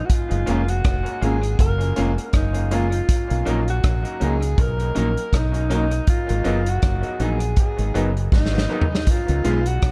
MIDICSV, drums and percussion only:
0, 0, Header, 1, 2, 480
1, 0, Start_track
1, 0, Key_signature, 6, "major"
1, 0, Tempo, 748130
1, 63, Time_signature, 4, 2, 24, 8
1, 6362, End_track
2, 0, Start_track
2, 0, Title_t, "Drums"
2, 62, Note_on_c, 9, 36, 99
2, 62, Note_on_c, 9, 42, 105
2, 126, Note_off_c, 9, 36, 0
2, 126, Note_off_c, 9, 42, 0
2, 198, Note_on_c, 9, 42, 55
2, 262, Note_off_c, 9, 42, 0
2, 302, Note_on_c, 9, 42, 59
2, 366, Note_off_c, 9, 42, 0
2, 439, Note_on_c, 9, 42, 63
2, 503, Note_off_c, 9, 42, 0
2, 542, Note_on_c, 9, 42, 72
2, 543, Note_on_c, 9, 36, 113
2, 546, Note_on_c, 9, 37, 107
2, 606, Note_off_c, 9, 42, 0
2, 608, Note_off_c, 9, 36, 0
2, 610, Note_off_c, 9, 37, 0
2, 680, Note_on_c, 9, 42, 45
2, 744, Note_off_c, 9, 42, 0
2, 786, Note_on_c, 9, 42, 51
2, 850, Note_off_c, 9, 42, 0
2, 919, Note_on_c, 9, 42, 64
2, 984, Note_off_c, 9, 42, 0
2, 1020, Note_on_c, 9, 36, 100
2, 1020, Note_on_c, 9, 42, 79
2, 1084, Note_off_c, 9, 36, 0
2, 1084, Note_off_c, 9, 42, 0
2, 1160, Note_on_c, 9, 42, 54
2, 1224, Note_off_c, 9, 42, 0
2, 1259, Note_on_c, 9, 42, 75
2, 1323, Note_off_c, 9, 42, 0
2, 1400, Note_on_c, 9, 42, 50
2, 1464, Note_off_c, 9, 42, 0
2, 1494, Note_on_c, 9, 42, 68
2, 1498, Note_on_c, 9, 36, 90
2, 1500, Note_on_c, 9, 37, 97
2, 1559, Note_off_c, 9, 42, 0
2, 1562, Note_off_c, 9, 36, 0
2, 1565, Note_off_c, 9, 37, 0
2, 1632, Note_on_c, 9, 42, 52
2, 1696, Note_off_c, 9, 42, 0
2, 1741, Note_on_c, 9, 42, 63
2, 1805, Note_off_c, 9, 42, 0
2, 1875, Note_on_c, 9, 42, 50
2, 1940, Note_off_c, 9, 42, 0
2, 1981, Note_on_c, 9, 36, 106
2, 1981, Note_on_c, 9, 42, 108
2, 2045, Note_off_c, 9, 36, 0
2, 2046, Note_off_c, 9, 42, 0
2, 2120, Note_on_c, 9, 42, 52
2, 2184, Note_off_c, 9, 42, 0
2, 2223, Note_on_c, 9, 42, 60
2, 2287, Note_off_c, 9, 42, 0
2, 2360, Note_on_c, 9, 42, 55
2, 2424, Note_off_c, 9, 42, 0
2, 2461, Note_on_c, 9, 42, 78
2, 2463, Note_on_c, 9, 36, 101
2, 2465, Note_on_c, 9, 37, 110
2, 2525, Note_off_c, 9, 42, 0
2, 2527, Note_off_c, 9, 36, 0
2, 2529, Note_off_c, 9, 37, 0
2, 2598, Note_on_c, 9, 42, 46
2, 2662, Note_off_c, 9, 42, 0
2, 2702, Note_on_c, 9, 42, 52
2, 2766, Note_off_c, 9, 42, 0
2, 2839, Note_on_c, 9, 42, 60
2, 2903, Note_off_c, 9, 42, 0
2, 2938, Note_on_c, 9, 36, 117
2, 2938, Note_on_c, 9, 42, 76
2, 3002, Note_off_c, 9, 36, 0
2, 3002, Note_off_c, 9, 42, 0
2, 3077, Note_on_c, 9, 42, 49
2, 3141, Note_off_c, 9, 42, 0
2, 3180, Note_on_c, 9, 42, 77
2, 3244, Note_off_c, 9, 42, 0
2, 3320, Note_on_c, 9, 42, 51
2, 3384, Note_off_c, 9, 42, 0
2, 3418, Note_on_c, 9, 36, 85
2, 3420, Note_on_c, 9, 42, 72
2, 3426, Note_on_c, 9, 37, 94
2, 3482, Note_off_c, 9, 36, 0
2, 3485, Note_off_c, 9, 42, 0
2, 3490, Note_off_c, 9, 37, 0
2, 3555, Note_on_c, 9, 42, 52
2, 3620, Note_off_c, 9, 42, 0
2, 3661, Note_on_c, 9, 42, 65
2, 3726, Note_off_c, 9, 42, 0
2, 3794, Note_on_c, 9, 42, 51
2, 3858, Note_off_c, 9, 42, 0
2, 3895, Note_on_c, 9, 42, 97
2, 3898, Note_on_c, 9, 36, 105
2, 3959, Note_off_c, 9, 42, 0
2, 3962, Note_off_c, 9, 36, 0
2, 4036, Note_on_c, 9, 42, 55
2, 4100, Note_off_c, 9, 42, 0
2, 4137, Note_on_c, 9, 42, 57
2, 4201, Note_off_c, 9, 42, 0
2, 4275, Note_on_c, 9, 42, 58
2, 4339, Note_off_c, 9, 42, 0
2, 4377, Note_on_c, 9, 42, 80
2, 4380, Note_on_c, 9, 36, 108
2, 4381, Note_on_c, 9, 37, 109
2, 4441, Note_off_c, 9, 42, 0
2, 4444, Note_off_c, 9, 36, 0
2, 4445, Note_off_c, 9, 37, 0
2, 4512, Note_on_c, 9, 42, 44
2, 4576, Note_off_c, 9, 42, 0
2, 4618, Note_on_c, 9, 42, 57
2, 4682, Note_off_c, 9, 42, 0
2, 4750, Note_on_c, 9, 42, 63
2, 4814, Note_off_c, 9, 42, 0
2, 4853, Note_on_c, 9, 42, 82
2, 4856, Note_on_c, 9, 36, 104
2, 4918, Note_off_c, 9, 42, 0
2, 4920, Note_off_c, 9, 36, 0
2, 4995, Note_on_c, 9, 42, 52
2, 5059, Note_off_c, 9, 42, 0
2, 5102, Note_on_c, 9, 42, 73
2, 5166, Note_off_c, 9, 42, 0
2, 5241, Note_on_c, 9, 42, 47
2, 5305, Note_off_c, 9, 42, 0
2, 5338, Note_on_c, 9, 36, 99
2, 5345, Note_on_c, 9, 38, 48
2, 5403, Note_off_c, 9, 36, 0
2, 5409, Note_off_c, 9, 38, 0
2, 5426, Note_on_c, 9, 38, 51
2, 5491, Note_off_c, 9, 38, 0
2, 5504, Note_on_c, 9, 38, 72
2, 5569, Note_off_c, 9, 38, 0
2, 5655, Note_on_c, 9, 43, 85
2, 5720, Note_off_c, 9, 43, 0
2, 5741, Note_on_c, 9, 38, 75
2, 5805, Note_off_c, 9, 38, 0
2, 5817, Note_on_c, 9, 42, 95
2, 5820, Note_on_c, 9, 36, 97
2, 5882, Note_off_c, 9, 42, 0
2, 5884, Note_off_c, 9, 36, 0
2, 5956, Note_on_c, 9, 42, 54
2, 6020, Note_off_c, 9, 42, 0
2, 6061, Note_on_c, 9, 42, 63
2, 6125, Note_off_c, 9, 42, 0
2, 6197, Note_on_c, 9, 42, 62
2, 6261, Note_off_c, 9, 42, 0
2, 6301, Note_on_c, 9, 42, 77
2, 6304, Note_on_c, 9, 36, 110
2, 6305, Note_on_c, 9, 37, 111
2, 6362, Note_off_c, 9, 36, 0
2, 6362, Note_off_c, 9, 37, 0
2, 6362, Note_off_c, 9, 42, 0
2, 6362, End_track
0, 0, End_of_file